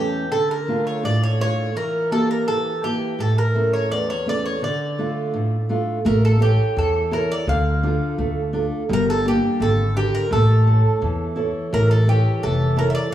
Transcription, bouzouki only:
0.00 0.29 G4 medium
0.32 0.48 A4 medium
0.51 0.86 A#4 medium
0.87 1.03 C#5 medium
1.05 1.23 D5 medium
1.23 1.39 C#5 medium
1.41 1.74 C#5 medium
1.77 2.09 A#4 medium
2.12 2.28 A4 medium
2.31 2.47 A#4 medium
2.48 2.84 A4 medium
2.84 3.21 G4 medium
3.20 3.36 A4 medium
3.38 3.71 A#4 medium
3.73 3.90 C#5 medium
3.91 4.08 D5 medium
4.10 4.28 C#5 medium
4.29 4.45 D5 medium
4.46 4.63 C#5 medium
4.64 5.67 D5 medium
6.06 6.24 A#4 medium
6.25 6.41 A4 medium
6.42 6.78 G4 medium
6.78 7.11 A4 medium
7.13 7.29 A#4 medium
7.32 7.48 D5 medium
7.49 8.51 F5 medium
8.93 9.10 A#4 loud
9.10 9.25 A4 medium
9.28 9.63 G4 medium
9.62 9.94 A4 medium
9.97 10.15 G4 medium
10.15 10.31 A#4 medium
10.33 11.34 A4 medium
11.74 11.89 A#4 medium
11.91 12.07 A4 medium
12.09 12.44 G4 medium
12.43 12.76 A4 medium
12.79 12.90 A#4 medium
12.90 12.94 E5 medium
12.95 13.11 D5 medium

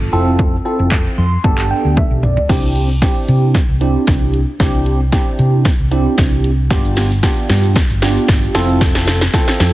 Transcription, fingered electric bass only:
0.00 0.09 G1 medium
0.13 0.58 F1 medium
0.79 1.06 F1 medium
1.18 1.36 F2 medium
1.44 1.72 G1 medium
1.85 2.02 D2 medium
2.11 2.37 B1 medium
2.49 3.03 C2 loud
3.28 3.56 C3 medium
3.69 3.95 C2 medium
4.08 4.43 C2 medium
4.60 5.14 C2 medium
5.39 5.66 C3 medium
5.79 6.06 C2 medium
6.18 6.72 C2 medium
6.71 7.24 G1 loud
7.50 7.77 G2 medium
7.90 8.16 G1 medium
8.29 8.46 G1 medium
8.55 9.26 F1 loud
9.60 9.73 F2 medium

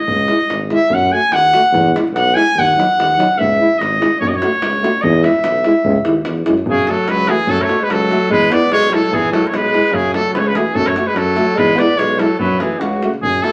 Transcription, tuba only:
0.08 0.31 C#2 medium
0.49 0.72 G#1 medium
0.90 1.13 F#2 loud
1.31 1.54 D#2 medium
1.71 1.95 E2 loud
2.13 2.36 B1 medium
2.54 2.78 D#2 loud
2.97 3.19 D#2 medium
3.37 3.60 C#2 medium
3.78 4.01 G#1 medium
4.20 4.43 F#2 medium
4.61 4.84 C#2 medium
5.03 5.25 E2 loud
5.43 5.66 B1 medium
5.84 5.96 C#2 loud
6.05 6.23 D#2 medium
6.26 6.44 E2 medium
6.46 6.64 F#2 medium
6.65 6.88 F#2 medium
7.06 7.29 C#2 medium
7.47 7.70 F#2 medium
7.88 8.11 C#2 medium
8.28 8.51 E2 medium
8.70 8.93 B1 medium
9.10 9.33 E2 medium
9.51 9.74 B1 medium
9.92 10.15 F#2 loud
10.33 10.56 C#2 medium
10.74 10.97 F#2 loud
11.15 11.38 F#2 medium
11.57 11.79 E2 medium
11.98 12.20 B1 medium
12.39 12.61 F#2 medium
12.81 13.03 C#2 medium
13.21 13.43 F#2 medium

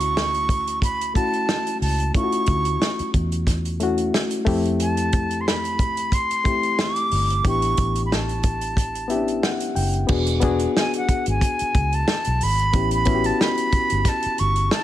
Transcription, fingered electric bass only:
0.00 1.29 D2 medium
1.82 2.10 C#2 medium
2.48 2.76 D2 medium
3.00 muted fingered electric bass stroke soft
3.15 4.10 E2 medium
4.47 6.31 F2 loud
7.12 7.40 G1 medium
7.45 7.73 A1 medium
7.79 9.40 A1 medium
9.76 10.04 F#1 medium
10.10 10.66 E1 medium
11.09 muted fingered electric bass stroke soft
11.27 11.40 G#1 medium
11.61 muted fingered electric bass stroke soft
11.75 12.03 C#2 medium
12.27 12.39 B1 medium
12.43 12.70 G#1 medium
12.74 13.30 A1 loud
13.73 muted fingered electric bass stroke soft
13.92 14.04 G1 medium
14.26 muted fingered electric bass stroke soft
14.40 14.68 G1 medium

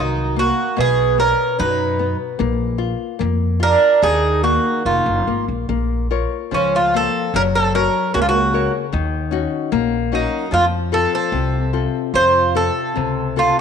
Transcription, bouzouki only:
0.00 0.40 D#4 medium
0.39 0.80 F#4 medium
0.80 1.19 G#4 loud
1.20 1.59 A#4 loud
1.60 2.16 B4 loud
3.63 4.03 A#4 loud
4.03 4.43 G#4 loud
4.44 4.82 F#4 medium
4.86 5.44 F4 medium
6.54 6.75 C#4 medium
6.76 6.95 F4 medium
6.97 7.36 A4 loud
7.36 7.41 A#4 loud
7.55 7.75 A4 medium
7.75 8.14 A#4 medium
8.14 8.21 F#4 medium
8.22 8.28 F4 medium
8.29 8.71 F#4 medium
10.15 10.54 D#4 medium
10.54 10.64 F4 loud
10.94 11.14 A4 loud
11.15 11.71 A4 medium
12.15 12.56 C5 loud
12.57 13.41 A4 medium
13.39 13.57 F4 medium

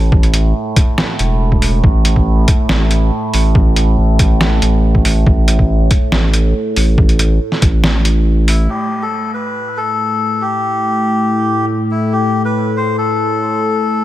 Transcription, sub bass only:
0.00 0.53 A1 loud
1.19 1.82 E1 loud
1.84 2.46 A1 loud
2.69 3.11 A1 loud
3.34 3.96 A1 loud
3.98 4.61 A1 medium
4.62 5.03 A1 medium
5.05 5.25 A1 loud
5.26 5.89 A1 loud
6.12 6.53 A1 loud
6.76 7.39 A1 medium
7.62 8.68 A1 medium

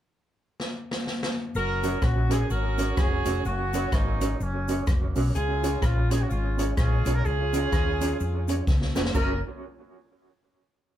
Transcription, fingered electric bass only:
1.55 1.95 F#1 loud
2.02 2.43 A#1 medium
2.50 2.90 G#1 medium
2.97 3.21 F1 medium
3.26 3.42 F1 loud
3.45 3.85 F#1 loud
3.92 4.33 G#1 loud
4.40 4.80 F#1 loud
4.88 5.12 F1 medium
5.16 5.32 B1 medium
5.35 5.75 C#2 loud
5.82 6.23 A#1 loud
6.31 6.71 G#1 loud
6.78 7.02 A#1 medium
7.06 7.22 B1 medium
7.26 7.66 C#2 loud
7.73 8.13 D#2 medium
8.21 8.61 F2 loud
8.68 8.92 C#2 medium
8.97 9.12 F1 medium
9.15 9.41 F#1 loud

